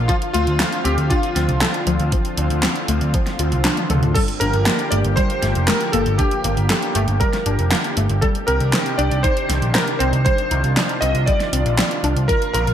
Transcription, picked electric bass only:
0.35 0.46 D2 loud
0.47 0.58 D2 medium
0.85 0.96 D2 loud
0.98 1.09 D2 medium
1.36 1.47 D2 loud
1.49 1.60 C2 medium
1.87 1.98 D2 medium
2.00 2.11 D2 medium
2.38 2.49 D2 loud
2.51 2.62 D2 medium
2.89 3.00 D2 medium
3.02 3.12 D2 medium
3.40 3.51 D2 loud
3.52 3.63 C2 medium
3.90 4.01 D2 medium
4.03 4.14 D2 medium
4.41 4.52 G1 loud
4.54 4.65 G1 medium
4.92 5.03 G1 loud
5.05 5.16 G1 medium
5.43 5.54 G1 medium
5.56 5.67 F1 medium
5.94 6.05 G1 medium
6.07 6.18 G1 medium
6.45 6.56 G1 medium
6.58 6.68 G1 medium
6.96 7.07 G1 medium
7.08 7.19 G1 medium
7.46 7.57 G1 loud
7.59 7.70 F1 medium
7.97 8.08 G1 medium
8.10 8.21 G1 medium
8.48 8.59 C2 loud
8.61 8.72 C2 medium
8.99 9.10 C2 loud
9.12 9.23 C2 medium
9.50 9.61 C2 loud
9.63 9.73 A#1 medium
10.01 10.12 C2 medium
10.14 10.24 C2 medium
10.52 10.62 C2 loud
10.64 10.75 C2 medium
11.02 11.13 C2 loud
11.15 11.26 C2 medium
11.53 11.64 C2 medium
11.66 11.77 A#1 medium
12.04 12.15 C2 medium
12.17 12.28 C2 medium
12.55 12.66 A#1 loud
12.67 12.74 A#1 medium

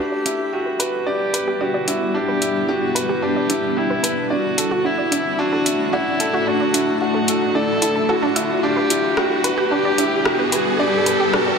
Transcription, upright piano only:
0.00 0.24 D4 medium
0.26 0.51 E4 medium
0.53 0.68 G4 medium
0.79 1.05 B4 medium
1.06 1.32 D5 medium
1.34 1.59 B4 medium
1.61 1.76 G4 medium
1.88 2.13 E4 medium
2.14 2.40 D4 medium
2.41 2.57 E4 medium
2.68 2.94 G4 medium
2.95 3.21 B4 medium
3.22 3.48 D4 medium
3.50 3.75 E4 medium
3.77 3.92 G4 medium
4.03 4.29 B4 medium
4.30 4.56 D5 medium
4.57 4.83 A4 medium
4.85 5.00 F#4 medium
5.12 5.38 E4 medium
5.39 5.65 D4 loud
5.66 5.81 E4 medium
5.93 6.19 F#4 loud
6.20 6.46 A4 medium
6.47 6.73 D4 medium
6.74 7.00 E4 medium
7.01 7.17 F#4 medium
7.28 7.54 A4 medium
7.55 7.81 D5 medium
7.82 8.08 A4 medium
8.09 8.25 F#4 medium
8.36 8.62 E4 medium
8.63 8.89 D4 medium
8.90 9.06 E4 medium
9.17 9.43 G4 medium
9.44 9.70 B4 loud
9.71 9.97 D4 medium
9.98 10.24 E4 medium
10.26 10.41 G4 medium
10.52 10.78 B4 medium
10.79 11.05 D5 medium
11.06 11.32 B4 medium
11.34 11.49 G4 medium

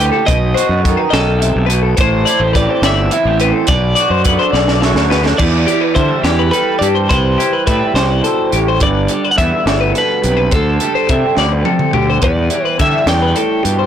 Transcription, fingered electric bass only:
0.29 0.54 B1 medium
0.69 0.95 F#2 medium
1.13 1.51 B1 medium
1.56 1.94 B1 medium
1.99 2.24 A1 medium
2.40 2.66 A1 medium
2.82 3.08 G1 loud
3.25 3.51 A1 medium
3.68 3.94 B1 medium
4.10 4.37 F#2 medium
4.53 4.92 B1 medium
4.94 5.34 D2 medium
5.39 5.65 E2 medium
5.96 6.09 D3 medium
6.24 6.50 E2 medium
6.81 7.07 G2 medium
7.11 7.36 C2 medium
7.67 7.80 A2 medium
7.94 8.21 C2 medium
8.53 8.79 A1 medium
8.81 9.07 G1 medium
9.38 9.51 E2 medium
9.66 9.92 G1 medium
10.24 10.50 B1 medium
10.52 10.78 D2 medium
11.10 11.22 C3 medium
11.37 11.63 D2 medium
11.94 12.20 D2 medium
12.22 12.48 E2 medium
12.80 12.93 D3 medium
13.06 13.33 E2 medium
13.65 13.86 G2 medium

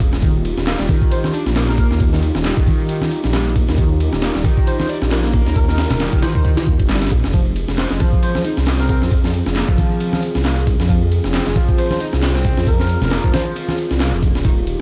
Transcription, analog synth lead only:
0.23 0.27 D#3 medium
0.67 0.75 A#3 medium
0.79 0.86 G3 medium
0.89 1.33 D#3 medium
1.34 1.38 D4 loud
1.56 1.99 A#3 loud
2.13 2.19 D#3 medium
2.45 2.53 G3 medium
2.57 2.66 D#3 medium
2.67 2.88 D#3 medium
2.89 3.01 D#3 medium
3.02 3.08 D#3 medium
3.34 3.42 G3 medium
3.78 3.83 D#3 medium
4.23 4.31 A#3 medium
4.35 4.41 G3 medium
4.45 4.88 D#3 medium
4.89 4.94 D4 loud
5.11 5.55 A#3 loud
5.69 5.75 D#3 medium
6.00 6.08 G3 medium
6.13 6.22 D#3 medium
6.23 6.44 D#3 medium
6.45 6.56 D#3 medium
6.57 6.63 D#3 medium
6.89 6.97 G3 medium
7.34 7.38 F3 medium
7.78 7.86 C4 medium
7.91 7.97 G#3 medium
8.00 8.44 F3 medium
8.45 8.50 D#4 loud
8.67 9.11 C4 loud
9.24 9.30 F3 medium
9.56 9.64 A#3 medium
9.68 9.77 F3 medium
9.78 9.99 F3 medium
10.00 10.12 F3 medium
10.13 10.19 F3 medium
10.45 10.53 A#3 medium
10.89 10.94 F3 medium
11.34 11.42 C4 medium
11.46 11.52 G#3 medium
11.56 11.99 F3 medium
12.01 12.05 D#4 loud
12.22 12.66 C4 loud
12.80 12.86 F3 medium
13.11 13.19 A#3 medium
13.24 13.33 F3 medium
13.34 13.55 F3 medium
13.56 13.67 F3 medium
13.68 13.75 F3 medium
14.00 14.08 A#3 medium
14.45 14.50 D#3 medium

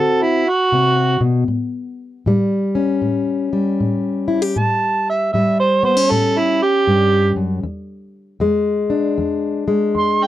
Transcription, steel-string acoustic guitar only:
0.00 0.66 D3 medium
0.00 0.44 C4 medium
0.00 1.45 F#4 medium
0.72 1.20 C3 medium
1.21 1.48 B2 medium
1.48 2.20 A2 medium
2.26 2.98 A2 medium
2.26 3.52 G3 medium
2.75 4.54 C#4 medium
3.02 3.74 A2 medium
3.53 5.34 G3 medium
3.80 4.52 A2 medium
4.28 4.42 E4 medium
4.42 4.57 G4 soft
4.56 5.28 A2 medium
5.34 6.05 A2 medium
5.34 6.61 G3 medium
5.83 5.97 B3 soft
5.97 7.65 C#4 soft
6.11 6.83 A2 medium
6.87 7.36 G2 medium
7.36 7.63 F#2 medium
7.63 8.36 E2 medium
8.40 9.12 E2 medium
8.40 9.66 G#3 medium
8.90 10.27 D4 medium
9.18 9.90 E2 medium
9.68 10.27 G#3 medium
9.95 10.27 E2 medium

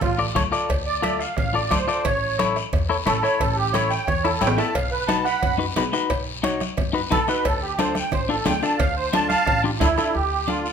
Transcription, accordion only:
0.01 0.18 F4 medium
0.86 1.01 D5 medium
1.02 1.19 D5 medium
1.19 1.36 F5 medium
1.37 1.54 F5 medium
1.54 1.71 D5 medium
1.71 2.04 C5 medium
2.04 2.37 C#5 loud
3.06 3.23 A4 loud
3.23 3.39 C#5 medium
3.40 3.56 A4 medium
3.56 3.73 G4 medium
3.73 3.90 C#5 medium
3.90 4.07 G5 medium
4.07 4.24 C#5 loud
4.24 4.41 A4 medium
4.41 4.58 G5 medium
4.58 4.75 A5 medium
4.75 4.91 F5 medium
4.91 5.08 B4 medium
5.08 5.25 A5 loud
5.24 5.56 F#5 medium
5.24 5.58 B5 medium
7.11 7.28 A4 loud
7.28 7.44 B4 medium
7.45 7.61 A4 medium
7.62 7.78 G4 medium
7.79 7.95 C5 medium
7.96 8.12 G5 medium
8.13 8.29 C5 loud
8.29 8.46 A4 medium
8.46 8.62 G5 medium
8.62 8.79 A5 medium
8.78 8.95 F5 medium
8.97 9.13 C5 medium
9.13 9.27 A5 loud
9.28 9.60 F5 medium
9.28 9.62 A5 loud
9.80 10.15 E4 loud
10.14 10.49 G4 medium
10.47 10.72 F4 medium

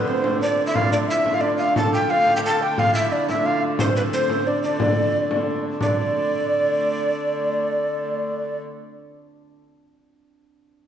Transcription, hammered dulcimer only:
0.00 0.44 A3 medium
0.00 0.14 B3 medium
0.00 0.41 D4 medium
0.00 0.73 F4 medium
0.08 0.23 C4 medium
0.24 3.79 C4 medium
0.41 0.92 D4 medium
0.67 0.80 E4 medium
0.74 1.15 F4 medium
0.92 1.42 D4 medium
1.09 1.42 E4 medium
1.36 1.60 F4 medium
1.42 3.11 D4 medium
1.61 2.10 F4 medium
1.77 2.43 A4 loud
1.93 2.62 G4 medium
2.10 2.78 F4 medium
2.44 5.36 A4 loud
2.62 5.76 G4 medium
2.78 3.01 F4 loud
2.95 3.28 E4 medium
3.11 4.47 D4 medium
3.28 3.51 E4 medium
3.45 6.82 F4 medium
3.79 4.13 C4 medium
4.13 8.13 C4 medium
4.48 4.64 D4 medium
4.64 5.80 D4 medium
5.80 9.54 D4 medium

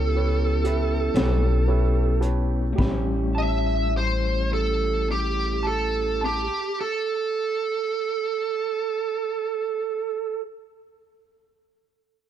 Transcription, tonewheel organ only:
0.00 2.74 B3 medium
0.00 2.73 C#4 medium
0.00 2.73 E4 medium
0.00 2.73 G4 medium
2.78 6.48 A3 medium
2.78 6.47 C#4 medium
2.78 6.47 E4 medium
2.78 6.48 G4 medium

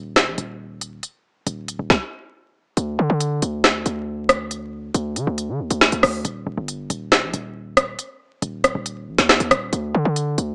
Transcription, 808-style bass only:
0.00 0.29 D#1 loud
0.27 0.37 A#1 loud
0.38 1.01 D#1 loud
1.47 1.70 D#1 loud
1.68 1.79 D1 loud
1.79 1.90 D#1 loud
2.77 2.98 D2 loud
2.99 3.09 D3 loud
3.10 3.41 D3 loud
3.42 3.84 D2 loud
3.86 4.90 D2 loud
4.94 5.18 D2 loud
5.16 5.27 D3 loud
5.27 5.50 D2 loud
5.49 5.61 D3 loud
5.60 5.70 D2 loud
5.71 5.91 D2 loud
5.92 6.03 D2 loud
6.03 6.24 D2 loud
6.25 6.46 D#1 loud
6.47 6.57 D#1 loud
6.57 6.89 G1 loud
6.90 7.24 D#1 loud
7.23 7.33 A#1 loud
7.34 7.96 D#1 loud
8.42 8.66 D#1 loud
8.64 8.74 D1 loud
8.75 9.09 D#1 loud
9.08 9.18 A#1 loud
9.19 9.39 D#2 loud
9.40 9.51 D#2 loud
9.51 9.72 D#1 loud
9.73 9.94 D2 loud
9.95 10.05 D3 loud
10.05 10.37 D3 loud
10.38 10.55 D2 loud

